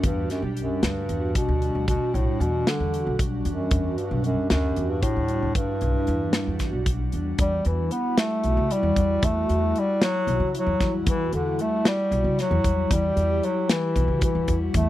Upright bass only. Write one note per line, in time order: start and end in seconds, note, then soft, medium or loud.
0.03 0.26 E2 medium
0.42 0.65 B1 medium
0.82 1.05 D2 medium
1.09 1.31 E2 medium
1.49 1.71 D2 medium
1.75 1.97 D2 medium
2.14 2.25 B1 medium
2.40 2.63 E2 medium
2.80 3.02 E2 medium
3.07 3.40 B1 medium
3.45 3.68 E2 medium
3.71 3.94 E2 medium
4.11 4.33 B1 medium
4.51 4.73 D2 medium
4.77 4.99 E2 medium
5.16 5.39 D2 medium
5.42 5.65 D2 medium
5.82 5.93 B1 medium
6.08 6.30 E2 medium
6.47 6.70 E2 medium
6.73 7.07 B1 medium
7.13 7.36 E2 medium
7.39 7.61 E2 medium
7.66 7.88 E2 medium
8.44 8.56 B1 medium
8.57 8.68 C#3 medium
8.83 8.95 E2 medium
8.96 9.19 E2 medium
9.23 9.45 E2 medium
9.50 9.72 E2 medium
10.27 10.39 B1 medium
10.40 10.52 C#3 medium
10.66 10.78 E2 medium
10.80 11.03 E2 medium
11.06 11.29 E2 medium
11.33 11.55 E2 medium
12.11 12.23 B1 medium
12.24 12.36 C#3 medium
12.51 12.62 E2 medium
12.64 12.87 E2 medium
12.91 13.13 E2 loud
13.17 13.39 E2 medium
13.96 14.07 B1 medium
14.08 14.20 C#3 medium
14.35 14.46 E2 medium
14.48 14.71 E2 medium
14.74 14.89 E2 medium